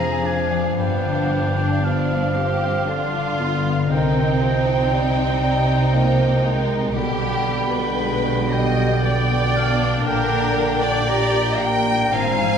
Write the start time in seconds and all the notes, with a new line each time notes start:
Already playing: F1 F2 F3 C4 D4 F4 G#4 F5 A#5
0.23 D4 G#5
0.51 F3
0.77 G1 G2 B3 D4 F5 G5
1.05 D3
1.31 D4
1.57 D4 F4
1.83 F3 B3 G4 F5
2.09 F4
2.35 C4 G4
2.61 F4
2.87 D3 D4 F4 F5
3.15 D3
3.40 B3 D4
3.66 D3
3.92 C2 C3 D#3 C4 D#4 G5
4.18 G3
4.42 F3 C4
4.67 D#4
4.92 G3 G4
5.17 D#4
5.42 G3 G4
5.67 D#4
5.92 F3 A#3 C4
6.18 G3
6.43 D#3 G#3 C4
6.68 G3
6.94 B1 B2 D3 G3 G4 G5 B5
7.21 B3
7.47 G3
7.72 D4 B4
7.98 G#3 G4 B5
8.25 D4
8.50 G3 G4 D#5 G5
8.78 D4
9.02 G3 B3 D5 G5
9.29 B3
9.55 G3 D4 F5
9.80 B3
10.05 A#1 A#2 D3 A#4 G5
10.31 A#3
10.56 G3
10.82 D5
11.08 G3 G4 A#5
11.34 D4
11.60 A#3 G4 G5
11.87 D4
12.12 G#1 G#2 F3 C4 F5 G#5 A#5
12.41 F3